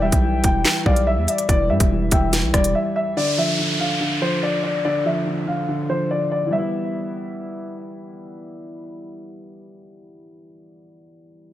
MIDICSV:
0, 0, Header, 1, 7, 480
1, 0, Start_track
1, 0, Tempo, 419580
1, 1705, Time_signature, 4, 2, 24, 8
1, 13193, End_track
2, 0, Start_track
2, 0, Title_t, "Grand piano"
2, 0, Program_c, 0, 0
2, 22, Note_on_c, 0, 76, 89
2, 474, Note_off_c, 0, 76, 0
2, 510, Note_on_c, 0, 79, 83
2, 958, Note_off_c, 0, 79, 0
2, 987, Note_on_c, 0, 74, 90
2, 1210, Note_off_c, 0, 74, 0
2, 1223, Note_on_c, 0, 76, 86
2, 1445, Note_off_c, 0, 76, 0
2, 1463, Note_on_c, 0, 76, 81
2, 1688, Note_off_c, 0, 76, 0
2, 1701, Note_on_c, 0, 74, 101
2, 1928, Note_off_c, 0, 74, 0
2, 1943, Note_on_c, 0, 76, 83
2, 2395, Note_off_c, 0, 76, 0
2, 2428, Note_on_c, 0, 79, 77
2, 2878, Note_off_c, 0, 79, 0
2, 2901, Note_on_c, 0, 74, 86
2, 3127, Note_off_c, 0, 74, 0
2, 3147, Note_on_c, 0, 76, 82
2, 3369, Note_off_c, 0, 76, 0
2, 3386, Note_on_c, 0, 76, 83
2, 3610, Note_off_c, 0, 76, 0
2, 3627, Note_on_c, 0, 74, 94
2, 3851, Note_off_c, 0, 74, 0
2, 3871, Note_on_c, 0, 76, 83
2, 4319, Note_off_c, 0, 76, 0
2, 4343, Note_on_c, 0, 77, 74
2, 4795, Note_off_c, 0, 77, 0
2, 4826, Note_on_c, 0, 72, 78
2, 5050, Note_off_c, 0, 72, 0
2, 5068, Note_on_c, 0, 74, 81
2, 5286, Note_off_c, 0, 74, 0
2, 5303, Note_on_c, 0, 74, 82
2, 5529, Note_off_c, 0, 74, 0
2, 5546, Note_on_c, 0, 74, 91
2, 5770, Note_off_c, 0, 74, 0
2, 5791, Note_on_c, 0, 76, 78
2, 6239, Note_off_c, 0, 76, 0
2, 6264, Note_on_c, 0, 77, 71
2, 6715, Note_off_c, 0, 77, 0
2, 6746, Note_on_c, 0, 72, 77
2, 6970, Note_off_c, 0, 72, 0
2, 6987, Note_on_c, 0, 74, 77
2, 7208, Note_off_c, 0, 74, 0
2, 7225, Note_on_c, 0, 74, 75
2, 7450, Note_off_c, 0, 74, 0
2, 7465, Note_on_c, 0, 76, 84
2, 8859, Note_off_c, 0, 76, 0
2, 13193, End_track
3, 0, Start_track
3, 0, Title_t, "Soft synth lead"
3, 0, Program_c, 1, 80
3, 0, Note_on_c, 1, 79, 101
3, 938, Note_off_c, 1, 79, 0
3, 985, Note_on_c, 1, 77, 88
3, 1213, Note_off_c, 1, 77, 0
3, 1222, Note_on_c, 1, 76, 82
3, 1451, Note_off_c, 1, 76, 0
3, 1463, Note_on_c, 1, 74, 88
3, 1691, Note_off_c, 1, 74, 0
3, 2424, Note_on_c, 1, 76, 81
3, 2652, Note_off_c, 1, 76, 0
3, 13193, End_track
4, 0, Start_track
4, 0, Title_t, "Grand piano"
4, 0, Program_c, 2, 0
4, 0, Note_on_c, 2, 52, 99
4, 11, Control_c, 2, 64, 127
4, 26, Note_on_c, 2, 55, 89
4, 245, Note_off_c, 2, 52, 0
4, 262, Note_on_c, 2, 52, 84
4, 491, Note_off_c, 2, 52, 0
4, 508, Note_on_c, 2, 52, 81
4, 727, Note_off_c, 2, 52, 0
4, 744, Note_on_c, 2, 52, 95
4, 971, Note_off_c, 2, 55, 0
4, 989, Note_on_c, 2, 55, 82
4, 1690, Note_off_c, 2, 52, 0
4, 1707, Note_on_c, 2, 52, 94
4, 1924, Note_off_c, 2, 55, 0
4, 1941, Note_on_c, 2, 55, 80
4, 2171, Note_off_c, 2, 52, 0
4, 2188, Note_on_c, 2, 52, 90
4, 2408, Note_off_c, 2, 52, 0
4, 2426, Note_on_c, 2, 52, 82
4, 2647, Note_off_c, 2, 52, 0
4, 2664, Note_on_c, 2, 52, 100
4, 2884, Note_off_c, 2, 55, 0
4, 2902, Note_on_c, 2, 55, 81
4, 3623, Note_off_c, 2, 55, 0
4, 3623, Note_on_c, 2, 50, 94
4, 3624, Note_off_c, 2, 52, 0
4, 3639, Control_c, 2, 64, 0
4, 3812, Control_c, 2, 64, 127
4, 3865, Note_on_c, 2, 53, 80
4, 4088, Note_off_c, 2, 50, 0
4, 4105, Note_on_c, 2, 50, 78
4, 4327, Note_off_c, 2, 50, 0
4, 4344, Note_on_c, 2, 50, 76
4, 4565, Note_off_c, 2, 50, 0
4, 4582, Note_on_c, 2, 50, 90
4, 4806, Note_off_c, 2, 53, 0
4, 4823, Note_on_c, 2, 53, 81
4, 5532, Note_off_c, 2, 50, 0
4, 5549, Note_on_c, 2, 50, 94
4, 5764, Note_off_c, 2, 53, 0
4, 5781, Note_on_c, 2, 53, 84
4, 6006, Note_off_c, 2, 50, 0
4, 6023, Note_on_c, 2, 50, 82
4, 6246, Note_off_c, 2, 50, 0
4, 6263, Note_on_c, 2, 50, 81
4, 6487, Note_off_c, 2, 50, 0
4, 6504, Note_on_c, 2, 50, 93
4, 6726, Note_off_c, 2, 53, 0
4, 6743, Note_on_c, 2, 53, 71
4, 7396, Note_on_c, 2, 52, 84
4, 7441, Note_on_c, 2, 55, 74
4, 7464, Note_off_c, 2, 50, 0
4, 7464, Note_off_c, 2, 53, 0
4, 7480, Control_c, 2, 64, 0
4, 7487, Note_on_c, 2, 59, 72
4, 7533, Note_on_c, 2, 64, 92
4, 7715, Control_c, 2, 64, 127
4, 11583, Note_off_c, 2, 52, 0
4, 11629, Note_off_c, 2, 55, 0
4, 11674, Note_off_c, 2, 59, 0
4, 11720, Note_off_c, 2, 64, 0
4, 13193, End_track
5, 0, Start_track
5, 0, Title_t, "808-style bass"
5, 0, Program_c, 3, 38
5, 0, Note_on_c, 3, 28, 122
5, 130, Note_off_c, 3, 28, 0
5, 143, Note_on_c, 3, 35, 104
5, 490, Note_off_c, 3, 35, 0
5, 505, Note_on_c, 3, 28, 109
5, 735, Note_off_c, 3, 28, 0
5, 985, Note_on_c, 3, 35, 108
5, 1345, Note_on_c, 3, 40, 108
5, 1362, Note_off_c, 3, 35, 0
5, 1459, Note_off_c, 3, 40, 0
5, 1704, Note_on_c, 3, 28, 116
5, 1945, Note_on_c, 3, 43, 100
5, 1962, Note_off_c, 3, 28, 0
5, 2059, Note_off_c, 3, 43, 0
5, 2063, Note_on_c, 3, 28, 109
5, 2409, Note_off_c, 3, 28, 0
5, 2425, Note_on_c, 3, 28, 108
5, 2785, Note_on_c, 3, 35, 98
5, 2802, Note_off_c, 3, 28, 0
5, 2899, Note_off_c, 3, 35, 0
5, 2905, Note_on_c, 3, 28, 111
5, 3145, Note_off_c, 3, 28, 0
5, 13193, End_track
6, 0, Start_track
6, 0, Title_t, "Downlifter"
6, 0, Program_c, 4, 103
6, 3625, Note_on_c, 4, 60, 86
6, 7464, Note_off_c, 4, 60, 0
6, 13193, End_track
7, 0, Start_track
7, 0, Title_t, "Drums"
7, 141, Note_on_c, 9, 42, 92
7, 143, Note_on_c, 9, 36, 100
7, 256, Note_off_c, 9, 42, 0
7, 258, Note_off_c, 9, 36, 0
7, 499, Note_on_c, 9, 42, 88
7, 505, Note_on_c, 9, 36, 97
7, 614, Note_off_c, 9, 42, 0
7, 619, Note_off_c, 9, 36, 0
7, 745, Note_on_c, 9, 38, 124
7, 754, Note_on_c, 9, 39, 99
7, 859, Note_off_c, 9, 38, 0
7, 869, Note_off_c, 9, 39, 0
7, 985, Note_on_c, 9, 36, 91
7, 1099, Note_off_c, 9, 36, 0
7, 1102, Note_on_c, 9, 42, 69
7, 1217, Note_off_c, 9, 42, 0
7, 1466, Note_on_c, 9, 42, 84
7, 1580, Note_off_c, 9, 42, 0
7, 1584, Note_on_c, 9, 42, 88
7, 1698, Note_off_c, 9, 42, 0
7, 1704, Note_on_c, 9, 36, 115
7, 1705, Note_on_c, 9, 42, 89
7, 1819, Note_off_c, 9, 36, 0
7, 1819, Note_off_c, 9, 42, 0
7, 2061, Note_on_c, 9, 42, 89
7, 2063, Note_on_c, 9, 36, 99
7, 2176, Note_off_c, 9, 42, 0
7, 2178, Note_off_c, 9, 36, 0
7, 2419, Note_on_c, 9, 42, 84
7, 2425, Note_on_c, 9, 36, 99
7, 2534, Note_off_c, 9, 42, 0
7, 2539, Note_off_c, 9, 36, 0
7, 2665, Note_on_c, 9, 38, 72
7, 2665, Note_on_c, 9, 42, 85
7, 2779, Note_off_c, 9, 38, 0
7, 2779, Note_off_c, 9, 42, 0
7, 2904, Note_on_c, 9, 37, 103
7, 2905, Note_on_c, 9, 36, 94
7, 2905, Note_on_c, 9, 42, 84
7, 3018, Note_off_c, 9, 37, 0
7, 3019, Note_off_c, 9, 36, 0
7, 3019, Note_off_c, 9, 42, 0
7, 3022, Note_on_c, 9, 42, 75
7, 3137, Note_off_c, 9, 42, 0
7, 13193, End_track
0, 0, End_of_file